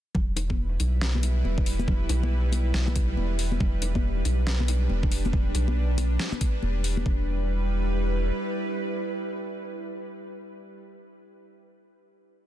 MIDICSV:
0, 0, Header, 1, 4, 480
1, 0, Start_track
1, 0, Key_signature, 1, "minor"
1, 0, Tempo, 431655
1, 169, Time_signature, 4, 2, 24, 8
1, 13863, End_track
2, 0, Start_track
2, 0, Title_t, "Synth drone"
2, 0, Program_c, 0, 95
2, 167, Note_on_c, 0, 64, 68
2, 168, Note_on_c, 0, 55, 78
2, 169, Note_on_c, 0, 71, 90
2, 3970, Note_off_c, 0, 64, 0
2, 4010, Note_on_c, 0, 62, 70
2, 7804, Note_off_c, 0, 55, 0
2, 7804, Note_off_c, 0, 71, 0
2, 7811, Note_off_c, 0, 62, 0
2, 7851, Note_on_c, 0, 55, 79
2, 7852, Note_on_c, 0, 64, 70
2, 7852, Note_on_c, 0, 71, 90
2, 11193, Note_off_c, 0, 55, 0
2, 11194, Note_off_c, 0, 64, 0
2, 11194, Note_off_c, 0, 71, 0
2, 13863, End_track
3, 0, Start_track
3, 0, Title_t, "Sub bass"
3, 0, Program_c, 1, 38
3, 168, Note_on_c, 1, 28, 98
3, 874, Note_off_c, 1, 28, 0
3, 891, Note_on_c, 1, 35, 97
3, 1595, Note_off_c, 1, 35, 0
3, 1610, Note_on_c, 1, 28, 96
3, 2314, Note_off_c, 1, 28, 0
3, 2330, Note_on_c, 1, 35, 97
3, 3034, Note_off_c, 1, 35, 0
3, 3049, Note_on_c, 1, 35, 100
3, 3514, Note_off_c, 1, 35, 0
3, 3530, Note_on_c, 1, 28, 99
3, 3995, Note_off_c, 1, 28, 0
3, 4008, Note_on_c, 1, 28, 95
3, 4713, Note_off_c, 1, 28, 0
3, 4729, Note_on_c, 1, 35, 95
3, 5434, Note_off_c, 1, 35, 0
3, 5450, Note_on_c, 1, 28, 100
3, 6154, Note_off_c, 1, 28, 0
3, 6169, Note_on_c, 1, 35, 97
3, 6874, Note_off_c, 1, 35, 0
3, 7369, Note_on_c, 1, 28, 102
3, 7834, Note_off_c, 1, 28, 0
3, 7849, Note_on_c, 1, 28, 99
3, 9244, Note_off_c, 1, 28, 0
3, 13863, End_track
4, 0, Start_track
4, 0, Title_t, "Drums"
4, 162, Note_on_c, 9, 64, 89
4, 168, Note_on_c, 9, 36, 127
4, 274, Note_off_c, 9, 64, 0
4, 280, Note_off_c, 9, 36, 0
4, 404, Note_on_c, 9, 60, 68
4, 408, Note_on_c, 9, 42, 78
4, 515, Note_off_c, 9, 60, 0
4, 519, Note_off_c, 9, 42, 0
4, 555, Note_on_c, 9, 36, 65
4, 557, Note_on_c, 9, 63, 89
4, 666, Note_off_c, 9, 36, 0
4, 668, Note_off_c, 9, 63, 0
4, 888, Note_on_c, 9, 42, 86
4, 888, Note_on_c, 9, 82, 59
4, 889, Note_on_c, 9, 60, 53
4, 999, Note_off_c, 9, 42, 0
4, 999, Note_off_c, 9, 82, 0
4, 1001, Note_off_c, 9, 60, 0
4, 1128, Note_on_c, 9, 38, 126
4, 1240, Note_off_c, 9, 38, 0
4, 1280, Note_on_c, 9, 63, 89
4, 1368, Note_on_c, 9, 42, 84
4, 1369, Note_on_c, 9, 60, 59
4, 1392, Note_off_c, 9, 63, 0
4, 1479, Note_off_c, 9, 42, 0
4, 1480, Note_off_c, 9, 60, 0
4, 1610, Note_on_c, 9, 63, 63
4, 1722, Note_off_c, 9, 63, 0
4, 1754, Note_on_c, 9, 36, 108
4, 1849, Note_on_c, 9, 46, 95
4, 1849, Note_on_c, 9, 82, 60
4, 1865, Note_off_c, 9, 36, 0
4, 1960, Note_off_c, 9, 46, 0
4, 1960, Note_off_c, 9, 82, 0
4, 1994, Note_on_c, 9, 63, 93
4, 1995, Note_on_c, 9, 82, 84
4, 2088, Note_on_c, 9, 36, 127
4, 2089, Note_on_c, 9, 64, 86
4, 2106, Note_off_c, 9, 63, 0
4, 2106, Note_off_c, 9, 82, 0
4, 2200, Note_off_c, 9, 36, 0
4, 2200, Note_off_c, 9, 64, 0
4, 2328, Note_on_c, 9, 42, 82
4, 2330, Note_on_c, 9, 60, 67
4, 2440, Note_off_c, 9, 42, 0
4, 2441, Note_off_c, 9, 60, 0
4, 2483, Note_on_c, 9, 63, 108
4, 2594, Note_off_c, 9, 63, 0
4, 2802, Note_on_c, 9, 63, 76
4, 2808, Note_on_c, 9, 60, 56
4, 2809, Note_on_c, 9, 42, 86
4, 2809, Note_on_c, 9, 82, 62
4, 2913, Note_off_c, 9, 63, 0
4, 2919, Note_off_c, 9, 60, 0
4, 2920, Note_off_c, 9, 42, 0
4, 2920, Note_off_c, 9, 82, 0
4, 3048, Note_on_c, 9, 38, 127
4, 3159, Note_off_c, 9, 38, 0
4, 3194, Note_on_c, 9, 82, 52
4, 3200, Note_on_c, 9, 63, 104
4, 3287, Note_on_c, 9, 42, 86
4, 3288, Note_on_c, 9, 36, 116
4, 3305, Note_off_c, 9, 82, 0
4, 3311, Note_off_c, 9, 63, 0
4, 3398, Note_off_c, 9, 42, 0
4, 3400, Note_off_c, 9, 36, 0
4, 3528, Note_on_c, 9, 63, 60
4, 3639, Note_off_c, 9, 63, 0
4, 3768, Note_on_c, 9, 46, 100
4, 3879, Note_off_c, 9, 46, 0
4, 3912, Note_on_c, 9, 63, 88
4, 4007, Note_on_c, 9, 64, 87
4, 4008, Note_on_c, 9, 36, 127
4, 4023, Note_off_c, 9, 63, 0
4, 4118, Note_off_c, 9, 64, 0
4, 4120, Note_off_c, 9, 36, 0
4, 4247, Note_on_c, 9, 42, 81
4, 4252, Note_on_c, 9, 60, 59
4, 4358, Note_off_c, 9, 42, 0
4, 4364, Note_off_c, 9, 60, 0
4, 4395, Note_on_c, 9, 36, 69
4, 4400, Note_on_c, 9, 63, 96
4, 4506, Note_off_c, 9, 36, 0
4, 4511, Note_off_c, 9, 63, 0
4, 4728, Note_on_c, 9, 42, 83
4, 4728, Note_on_c, 9, 82, 62
4, 4729, Note_on_c, 9, 60, 56
4, 4839, Note_off_c, 9, 42, 0
4, 4839, Note_off_c, 9, 82, 0
4, 4840, Note_off_c, 9, 60, 0
4, 4968, Note_on_c, 9, 38, 127
4, 5079, Note_off_c, 9, 38, 0
4, 5117, Note_on_c, 9, 63, 96
4, 5207, Note_on_c, 9, 42, 83
4, 5210, Note_on_c, 9, 60, 68
4, 5228, Note_off_c, 9, 63, 0
4, 5319, Note_off_c, 9, 42, 0
4, 5321, Note_off_c, 9, 60, 0
4, 5445, Note_on_c, 9, 63, 63
4, 5556, Note_off_c, 9, 63, 0
4, 5595, Note_on_c, 9, 36, 107
4, 5688, Note_on_c, 9, 46, 94
4, 5688, Note_on_c, 9, 82, 61
4, 5706, Note_off_c, 9, 36, 0
4, 5799, Note_off_c, 9, 46, 0
4, 5799, Note_off_c, 9, 82, 0
4, 5834, Note_on_c, 9, 82, 83
4, 5845, Note_on_c, 9, 63, 106
4, 5929, Note_on_c, 9, 36, 127
4, 5934, Note_on_c, 9, 64, 74
4, 5945, Note_off_c, 9, 82, 0
4, 5957, Note_off_c, 9, 63, 0
4, 6040, Note_off_c, 9, 36, 0
4, 6045, Note_off_c, 9, 64, 0
4, 6167, Note_on_c, 9, 60, 60
4, 6168, Note_on_c, 9, 42, 81
4, 6278, Note_off_c, 9, 60, 0
4, 6280, Note_off_c, 9, 42, 0
4, 6315, Note_on_c, 9, 63, 96
4, 6426, Note_off_c, 9, 63, 0
4, 6646, Note_on_c, 9, 63, 70
4, 6648, Note_on_c, 9, 60, 51
4, 6649, Note_on_c, 9, 42, 85
4, 6649, Note_on_c, 9, 82, 66
4, 6758, Note_off_c, 9, 63, 0
4, 6759, Note_off_c, 9, 60, 0
4, 6760, Note_off_c, 9, 42, 0
4, 6760, Note_off_c, 9, 82, 0
4, 6889, Note_on_c, 9, 38, 127
4, 7000, Note_off_c, 9, 38, 0
4, 7032, Note_on_c, 9, 63, 100
4, 7035, Note_on_c, 9, 82, 53
4, 7128, Note_on_c, 9, 42, 81
4, 7129, Note_on_c, 9, 36, 116
4, 7143, Note_off_c, 9, 63, 0
4, 7146, Note_off_c, 9, 82, 0
4, 7239, Note_off_c, 9, 42, 0
4, 7240, Note_off_c, 9, 36, 0
4, 7367, Note_on_c, 9, 63, 68
4, 7478, Note_off_c, 9, 63, 0
4, 7608, Note_on_c, 9, 46, 95
4, 7719, Note_off_c, 9, 46, 0
4, 7754, Note_on_c, 9, 63, 97
4, 7849, Note_on_c, 9, 36, 117
4, 7865, Note_off_c, 9, 63, 0
4, 7960, Note_off_c, 9, 36, 0
4, 13863, End_track
0, 0, End_of_file